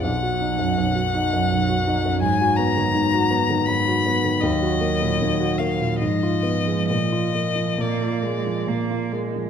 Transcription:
X:1
M:3/4
L:1/16
Q:1/4=78
K:Ebm
V:1 name="Violin"
^f12 | a2 b6 c'4 | e6 f2 e4 | e4 =d6 z2 |]
V:2 name="Grand piano"
=B,,, ^F ^D ^F,, B,,, F D F,, B,,, F D F,, | A,, G C E, A,, G C E, A,, G C E, | E,, G B, B,, E,, G B, B,, A,, F C A, | B,, F B, F, B,, F B, F, B,, F B, F, |]
V:3 name="Cello" clef=bass
^F,12- | ^F,12 | G,8 F,4- | F,4 B,2 A,2 B,2 A,2 |]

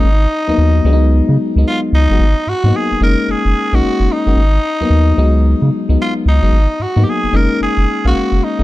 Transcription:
X:1
M:4/4
L:1/16
Q:"Swing 16ths" 1/4=111
K:G#dor
V:1 name="Tenor saxophone"
D8- D2 z2 E2 D2- | D2 F2 G2 A2 G3 F3 D2- | D8- D2 z2 E2 D2- | D2 F3/2 =G/2 ^G2 A2 G3 F3 D2 |]
V:2 name="FM electric piano"
z3 [F,A,B,D]3 [F,G,B,=D^D]4- [F,G,B,=D^D] [F,G,B,D]4 [F,G,B,F] | z3 [F,A,B,D]3 [G,A,CD]4- [G,A,CD] [G,A,CD]4 [G,A,CF] | z3 [F,A,B,D]3 [F,G,B,D]4- [F,G,B,D] [F,G,B,D]4 [F,G,B,D] | z3 [F,A,B,D]3 [G,A,CD]4- [G,A,CD] [G,A,Ce]4 [G,A,CD] |]
V:3 name="Analog synth bass" clef=bass
G,,,2 z D,, D,,2 C,,3 C, z C,, z2 C,, =G,,, | G,,, z G,, G,, z F,,, F,,, z F,,, F,,, z A,,, F,,, F,,, z =G,,, | G,,,2 z D,, D,,2 C,,3 C, z C,, z2 C,, =G,,, | G,,, z G,, G,, z F,,, F,,, z F,,, F,,, z A,,, F,,, F,,, z =G,,, |]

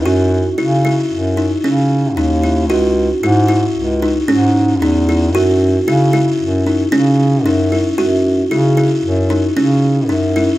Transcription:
X:1
M:5/4
L:1/8
Q:1/4=114
K:C#m
V:1 name="Kalimba"
F2 E E2 D C2 D E | F2 E E2 D C2 D E | F2 E E2 D C2 D E | F2 E E2 D C2 D E |]
V:2 name="Bass clarinet" clef=bass
F,,2 C,2 F,,2 C,2 D,,2 | C,,2 G,,2 C,,2 G,,2 E,,2 | F,,2 C,2 F,,2 C,2 F,,2 | F,,2 C,2 F,,2 C,2 F,,2 |]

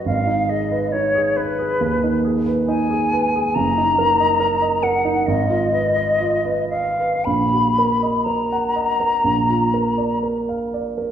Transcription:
X:1
M:4/4
L:1/16
Q:1/4=68
K:Ebm
V:1 name="Flute"
f2 e2 d2 c4 z2 a4 | b6 g2 e6 f2 | c'4 b8 z4 |]
V:2 name="Grand piano"
A,,, E A c E A c A E,, E A c E A c A | G,,, E B e B e B E A,,, F c e F c e c | B,,, G B e B g e B B,,, F B =d B f d B |]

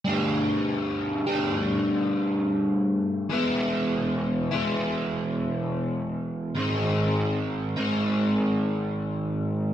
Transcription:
X:1
M:4/4
L:1/8
Q:1/4=74
K:Edor
V:1 name="Overdriven electric guitar"
[G,A,DG]3 [G,A,DG]4- [G,A,DG] | [E,^G,B,E]3 [E,G,B,E]4- [E,G,B,E] | [_A,,_E,_A,=C_E]3 [A,,E,A,CE]4- [A,,E,A,CE] |]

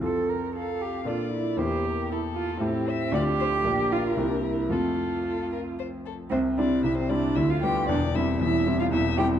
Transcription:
X:1
M:3/4
L:1/16
Q:1/4=115
K:F
V:1 name="Violin"
z4 f4 d4 | c2 B2 A4 G2 e2 | d2 c2 B8 | A4 A2 B2 c2 A2 |
[K:C] c2 d2 e c d2 e f g2 | d2 e2 e3 f e2 g2 |]
V:2 name="Cello"
A2 B2 A2 G2 F2 E2 | G4 E2 F2 C4 | G6 F2 E D E2 | F8 z4 |
[K:C] C2 D2 E C D2 E F G2 | D2 E2 E3 F E2 G2 |]
V:3 name="Grand piano"
[F,,CFA]8 [B,,B,DA]4 | [E,,B,EG]8 [A,,A,EG]4 | [D,,A,DF]4 [B,,,B,DG]4 [C,,B,CG]4 | [F,,A,CF]12 |
[K:C] [C,,C,]2 [G,CE]2 [C,,C,]2 [G,CE]2 [D,,D,]2 [G,B,F]2 | [E,,,E,,]2 [G,CE]2 [E,,,E,,]2 [G,CE]2 [E,,,E,,]2 [G,CE]2 |]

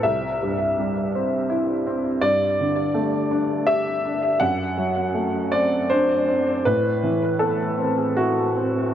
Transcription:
X:1
M:3/4
L:1/8
Q:1/4=81
K:G
V:1 name="Upright piano"
e4- e z | d4 e2 | f3 d c2 | B2 A2 F2 |]
V:2 name="Upright piano"
C,, G,, G, C E C | G,, D, A, D G D | F,, F, A, C D C | A,, E, B, C E C |]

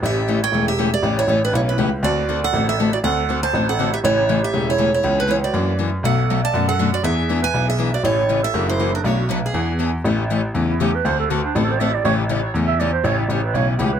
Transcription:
X:1
M:4/4
L:1/8
Q:"Swing" 1/4=240
K:Amix
V:1 name="Steel-string acoustic guitar"
e3 g2 e2 d- | d c2 B c B2 z | d3 f2 e2 d | f3 a2 f2 e |
c3 e2 c2 c- | c B c d3 z2 | f3 a2 f2 d | e3 ^g2 e2 d |
c3 e2 =c2 ^A | c2 B ^G4 z | z8 | z8 |
z8 | z8 |]
V:2 name="Clarinet"
G3 c2 G2 G- | G E2 D E E2 z | F3 A2 A2 F | A3 =c2 A2 G |
E3 G2 E2 E- | E D E F3 z2 | A3 d2 A2 F | ^G3 B2 G2 F |
E3 A2 E2 D | F2 D B,4 z | z4 z E G B | =c A F D (3E A c e d |
c z4 e d =c | c E G B c E G B |]
V:3 name="Steel-string acoustic guitar"
[C,E,A,CG] z [C,E,A,CG] z [C,E,A,CG] z [C,E,A,CG] z | [C,E,A,CG] z [C,E,A,CG] z [C,E,A,CG] z [C,E,A,CG] z | [D,A,=CFA] z [D,A,CFA] z [D,A,CFA] z [D,A,CFA] z | [D,A,=CFA] z [D,A,CFA] z [D,A,CFA] z [D,A,CFA] z |
[C,E,A,CG] z [C,E,A,CG] z [C,E,A,CG] z [C,E,A,CG] z | [C,E,B,C^G] z [C,E,B,CG] z [E,^A,DF] z [E,A,DF] z | [B,,F,A,DF] z [B,,F,A,DF] z [B,,F,A,DF] z [B,,F,A,DF] z | [E,B,D^G] z [E,B,DG] z [E,B,DG] z [E,B,DG] z |
[C,E,A,CG] z [C,E,A,CG] z [E,^A,DF] z [E,A,DF] z | [B,,F,A,DF] z [B,,F,A,DF] z [E,B,D^G] z [E,B,DG] z | [C,E,A,CG] z [C,E,A,CG] z [C,E,A,CG] z [C,E,A,CG] z | [D,A,=CFA] z [D,A,CFA] z [D,A,CFA] z [D,A,CFA] z |
[C,E,A,CG] z [C,E,A,CG] z [C,E,A,CG] z [C,E,A,CG] z | [C,E,A,CG] z [C,E,A,CG] z [C,E,A,CG] z [C,E,A,CG] z |]
V:4 name="Grand piano" clef=bass
A,,,4 E,,,4 | A,,,2 A,,,2 B,,,2 C,,2 | D,,4 A,,,4 | D,,4 A,,,4 |
A,,,4 E,,,4 | C,,4 F,,4 | B,,,4 F,,4 | E,,4 B,,,4 |
A,,,4 F,,,4 | B,,,4 E,,4 | A,,,4 E,,4 | D,,4 A,,,4 |
A,,,4 E,,4 | A,,,2 A,,,2 B,,,2 C,,2 |]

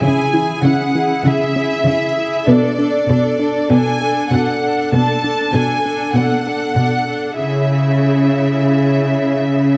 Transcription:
X:1
M:4/4
L:1/8
Q:1/4=98
K:C#phr
V:1 name="Violin section"
g2 f2 e4 | d4 g2 f2 | a2 g2 f4 | e8 |]
V:2 name="Viola section"
[EG] [EG] [EG] [EG] [EG] [EG] [EG] [EG] | [DA] [DA] [DA] [DA] [DA] [DA] [DA] [DA] | [DA] [DA] [DA] [DA] [DA] [DA] [DA] [DA] | [EG]8 |]
V:3 name="Synth arpeggio sound"
C, E, C E, C, C z2 | B, D A D B, A z2 | B, D A D B, A z2 | z8 |]
V:4 name="Cello section" clef=bass
C,2 C,2 C,2 C,2 | B,,2 B,,2 B,,2 B,,2 | B,,2 B,,2 B,,2 B,,2 | C,8 |]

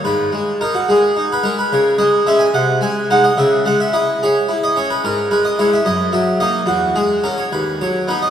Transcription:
X:1
M:6/8
L:1/16
Q:3/8=72
K:G#m
V:1 name="Harpsichord"
B4 A F G3 B A B | c2 d2 e g f2 g2 f d | e2 f e d2 c3 d c B | A2 B d c e d2 e2 d2 |
F2 G2 A c B2 c2 B d |]
V:2 name="Harpsichord" clef=bass
G,,2 G,2 D2 G,2 D2 G,2 | C,2 G,2 [G,C]2 ^B,,2 G,2 [G,D]2 | C,2 G,2 E2 G2 E2 C2 | G,,2 G,2 [G,E]2 F,,2 F,2 [A,D]2 |
E,,2 G,2 C2 D,,2 F,2 [B,D]2 |]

